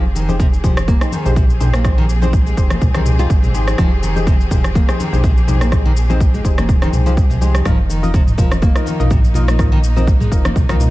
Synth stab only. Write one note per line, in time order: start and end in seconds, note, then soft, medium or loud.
0.29 0.37 D#4 medium
0.29 0.37 G4 medium
0.29 0.37 G#4 medium
0.29 0.37 C5 medium
0.64 0.80 D#4 medium
0.64 0.80 G4 medium
0.64 0.80 G#4 medium
0.64 0.80 C5 medium
1.01 1.22 D#4 medium
1.01 1.22 G4 medium
1.01 1.22 G#4 medium
1.01 1.22 C5 medium
1.26 1.34 D#4 medium
1.26 1.34 G4 medium
1.26 1.34 G#4 medium
1.26 1.34 C5 loud
1.60 1.82 D#4 medium
1.60 1.82 G4 medium
1.60 1.82 G#4 medium
1.60 1.82 C5 medium
1.85 1.95 D#4 medium
1.85 1.95 G4 medium
1.85 1.95 G#4 medium
1.85 1.95 C5 medium
2.22 2.31 D#4 medium
2.22 2.31 G4 medium
2.22 2.31 G#4 medium
2.22 2.31 C5 medium
2.57 2.73 D#4 medium
2.57 2.73 G4 medium
2.57 2.74 G#4 medium
2.57 2.73 C5 medium
2.95 3.16 D#4 medium
2.95 3.16 G4 medium
2.95 3.16 G#4 medium
2.95 3.16 C5 medium
3.19 3.28 D#4 medium
3.19 3.28 G4 medium
3.19 3.28 G#4 medium
3.19 3.28 C5 loud
3.54 3.76 D#4 medium
3.54 3.76 G4 medium
3.54 3.76 G#4 medium
3.54 3.76 C5 medium
3.78 3.89 D#4 medium
3.78 3.89 G4 medium
3.78 3.89 G#4 medium
3.78 3.89 C5 medium
4.16 4.24 D#4 medium
4.16 4.24 G4 medium
4.16 4.24 G#4 medium
4.16 4.24 C5 medium
4.51 4.67 D#4 medium
4.51 4.67 G4 medium
4.51 4.67 G#4 medium
4.51 4.67 C5 medium
4.89 5.10 D#4 medium
4.89 5.10 G4 medium
4.89 5.10 G#4 medium
4.89 5.10 C5 loud
5.13 5.21 D#4 medium
5.13 5.21 G4 medium
5.13 5.21 G#4 medium
5.13 5.21 C5 loud
5.48 5.69 D#4 medium
5.48 5.69 G4 medium
5.48 5.69 G#4 medium
5.48 5.69 C5 medium
5.72 5.82 D#4 medium
5.72 5.82 G4 medium
5.72 5.82 G#4 medium
5.72 5.82 C5 medium
6.10 6.18 D#4 medium
6.10 6.18 G4 medium
6.10 6.18 G#4 medium
6.10 6.18 C5 medium
6.45 6.61 D#4 medium
6.45 6.61 G4 medium
6.45 6.61 G#4 medium
6.45 6.61 C5 medium
6.82 7.03 D#4 medium
6.82 7.03 G4 medium
6.82 7.03 G#4 medium
6.82 7.03 C5 medium
7.06 7.15 D#4 medium
7.06 7.15 G4 medium
7.06 7.15 G#4 medium
7.06 7.15 C5 loud
7.41 7.63 D#4 medium
7.41 7.63 G4 medium
7.41 7.63 G#4 medium
7.41 7.63 C5 medium
7.65 7.76 D#4 medium
7.65 7.76 F4 medium
7.65 7.76 A#4 medium
7.65 7.76 D#5 medium
8.03 8.11 D#4 medium
8.03 8.11 F4 medium
8.03 8.11 A#4 medium
8.03 8.12 D#5 medium
8.38 8.54 D#4 medium
8.38 8.54 F4 medium
8.38 8.54 A#4 medium
8.38 8.54 D#5 medium
8.75 8.97 D#4 medium
8.75 8.97 F4 medium
8.75 8.97 A#4 medium
8.75 8.97 D#5 loud
9.00 9.08 D#4 medium
9.00 9.08 F4 medium
9.00 9.08 A#4 medium
9.00 9.08 D#5 loud
9.35 9.57 D#4 medium
9.35 9.57 F4 medium
9.35 9.57 A#4 medium
9.35 9.57 D#5 medium
9.59 9.70 D#4 medium
9.59 9.70 F4 medium
9.59 9.70 A#4 medium
9.59 9.70 D#5 medium
9.96 10.05 D#4 medium
9.96 10.05 F4 medium
9.96 10.05 A#4 medium
9.96 10.05 D#5 medium
10.31 10.48 D#4 medium
10.31 10.48 F4 medium
10.31 10.48 A#4 medium
10.31 10.48 D#5 medium
10.69 10.90 D#4 medium
10.69 10.90 F4 medium
10.69 10.90 A#4 medium
10.69 10.90 D#5 medium